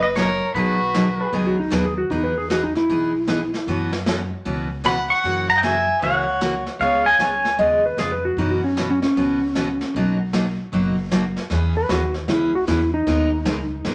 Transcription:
Already playing: upright bass F#1
0.02 fiddle B4, pedal steel guitar D#5
0.15 steel-string acoustic guitar B2 F#3 A#3 D#4 F#4, fiddle A#4, pedal steel guitar C#5, snare, hi-hat pedal
0.54 upright bass B1, steel-string acoustic guitar B2 D#3 F#3 B3 D#4 G#4, fiddle F#4, pedal steel guitar B4, brush sweep
0.94 steel-string acoustic guitar B2 D#3 F#3 B3 D#4 G#4, snare, hi-hat pedal
1.21 electric slide guitar B4
1.32 upright bass C#2, steel-string acoustic guitar B2 D#3 F#3 B3 D#4 G#4, electric slide guitar G#4, brush sweep
1.47 electric slide guitar F#4
1.60 electric slide guitar D#4
1.70 upright bass D#2, steel-string acoustic guitar B2 D#3 F#3 B3 D#4 G#4, electric slide guitar B4, snare, hi-hat pedal
1.85 electric slide guitar G#4
1.98 electric slide guitar F#4
2.10 upright bass E2, steel-string acoustic guitar E3 B3 D#4 G#4, electric slide guitar D#4, brush sweep
2.24 electric slide guitar B4
2.38 electric slide guitar G#4
2.50 steel-string acoustic guitar E3 B3 D#4 G#4, electric slide guitar F#4, snare, hi-hat pedal
2.63 electric slide guitar D#4
2.75 electric slide guitar E4, snare
2.89 upright bass B1, steel-string acoustic guitar E3 B3 D#4 G#4, brush sweep
3.27 steel-string acoustic guitar E3 B3 D#4 G#4, snare, hi-hat pedal
3.54 snare
3.67 upright bass F#2, steel-string acoustic guitar B2 E3 B3 C#4 F#4, brush sweep
3.93 snare
4.06 steel-string acoustic guitar B2 E3 B3 C#4 F#4, snare, hi-hat pedal
4.45 upright bass C#2, steel-string acoustic guitar B2 E3 B3 C#4 F#4, brush sweep
4.84 steel-string acoustic guitar B2 E3 B3 C#4 F#4, fiddle F#5, pedal steel guitar B5, snare, hi-hat pedal
5.09 fiddle F#5, pedal steel guitar C#6
5.24 upright bass F#2, steel-string acoustic guitar C#3 E3 A#3 C#4 F#4, brush sweep
5.49 fiddle F#5, pedal steel guitar A#5
5.57 fiddle D#5, pedal steel guitar G5
5.62 steel-string acoustic guitar C#3 E3 A#3 C#4 F#4, fiddle E5, pedal steel guitar G#5, snare, hi-hat pedal
6.01 upright bass C#2, steel-string acoustic guitar C#3 E3 A#3 C#4 F#4, fiddle C#5, pedal steel guitar F#5, brush sweep
6.41 steel-string acoustic guitar C#3 E3 A#3 C#4 F#4, snare, hi-hat pedal
6.66 snare
6.80 upright bass C#2, steel-string acoustic guitar C#3 G#3 B3 F4 G#4, fiddle C#5, pedal steel guitar F5, brush sweep
7.05 fiddle D#5, pedal steel guitar G#5
7.19 upright bass C#2, steel-string acoustic guitar C#3 G#3 B3 F4 G#4, fiddle C#5, pedal steel guitar G#5, snare, hi-hat pedal
7.45 snare
7.59 upright bass D#2, steel-string acoustic guitar C#3 G#3 B3 F4 G#4, electric slide guitar D#5, brush sweep
7.86 electric slide guitar B4
7.97 upright bass F2, steel-string acoustic guitar C#3 G#3 B3 F4 G#4, electric slide guitar G#4, snare, hi-hat pedal
8.12 electric slide guitar B4
8.25 electric slide guitar F#4
8.37 upright bass F#2, steel-string acoustic guitar B2 E3 B3 C#4 F#4, electric slide guitar D#4, brush sweep
8.51 electric slide guitar F#4
8.64 electric slide guitar C#4
8.77 steel-string acoustic guitar B2 E3 B3 C#4 F#4, snare, hi-hat pedal
8.90 electric slide guitar C#4
9.02 electric slide guitar C#4, snare
9.16 upright bass C#2, steel-string acoustic guitar B2 E3 B3 C#4 F#4, brush sweep
9.55 steel-string acoustic guitar B2 E3 B3 C#4 F#4, snare, hi-hat pedal
9.81 snare
9.94 upright bass B1, steel-string acoustic guitar B2 F#3 A#3 D#4 F#4, brush sweep
10.33 steel-string acoustic guitar B2 F#3 A#3 D#4 F#4, snare, hi-hat pedal
10.72 upright bass F#1, steel-string acoustic guitar B2 F#3 A#3 D#4 F#4, brush sweep
11.11 steel-string acoustic guitar B2 F#3 A#3 D#4 F#4, snare, hi-hat pedal
11.36 snare
11.50 upright bass E2, steel-string acoustic guitar E3 B3 C#4 G#4, brush sweep, snare
11.77 electric slide guitar B4
11.89 upright bass D#2, steel-string acoustic guitar E3 B3 C#4 G#4, electric slide guitar F#4, snare, hi-hat pedal
12.14 snare
12.28 upright bass C#2, steel-string acoustic guitar E3 B3 C#4 G#4, electric slide guitar E4, brush sweep, snare
12.55 electric slide guitar F#4
12.67 upright bass E2, steel-string acoustic guitar E3 B3 C#4 G#4, electric slide guitar E4, snare, hi-hat pedal
12.94 electric slide guitar D#4
13.07 upright bass D#2, steel-string acoustic guitar D#3 G#3 B3 D#4 A#4, brush sweep, snare
13.45 upright bass C#2, steel-string acoustic guitar D#3 G#3 B3 D#4 A#4, snare, hi-hat pedal
13.85 upright bass B1, steel-string acoustic guitar D#3 G#3 B3 D#4 A#4, brush sweep, snare

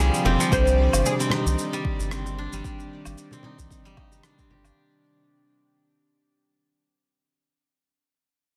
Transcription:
Already playing: synth drone C3 F3 G3 F4 D5, synth keys D3 G3 C4 F4, guzheng F3 C4 D4
0.00 sub bass C2, guzheng G3, oud G#4
0.14 cabasa
0.25 sub bass F1, guzheng C4, oud G4, low conga
0.40 guzheng F3, cabasa
0.49 sub bass C2, synth keys D#3 G3 C4, synth drone D#3 G4, guzheng G3, oud C5, kick, cabasa
0.54 synth keys D4
0.67 cabasa
0.93 sub bass G1, cabasa, low woodblock
1.06 oud G#4, cabasa
1.19 guzheng C4, high bongo, cabasa
1.30 synth keys D#3 G3 C4 D4, guzheng D#4, oud G4, cross-stick, low conga
1.46 sub bass C2, high conga, cabasa
1.58 cabasa
1.73 guzheng G3, cabasa
1.85 kick
1.99 sub bass G1, high bongo, high conga, cabasa
2.11 guzheng C4, cross-stick, cabasa
2.26 high bongo, cabasa
2.38 guzheng D4
2.52 sub bass G1, guzheng G3, high conga, cabasa
2.63 synth keys D#3 G3 C4, guzheng G3, kick, cabasa
2.67 synth keys D4
2.80 cabasa
3.05 sub bass G1, high conga, cabasa, low woodblock
3.18 cabasa
3.31 guzheng C4, high bongo, low conga, cabasa
3.42 synth keys D#3 G3 C4, guzheng D#4, low conga
3.46 synth keys D5
3.58 sub bass C2, kick, high conga, cabasa
3.71 kick, cabasa
3.85 guzheng G3, high bongo, high conga, cabasa
3.97 guzheng D#4, kick, low woodblock
4.12 high bongo, high conga, cabasa
4.23 guzheng D4, cross-stick, cabasa
4.38 guzheng C4, kick, cabasa
4.50 sub bass G1, guzheng G4, low conga
4.65 guzheng D4, cabasa, low woodblock

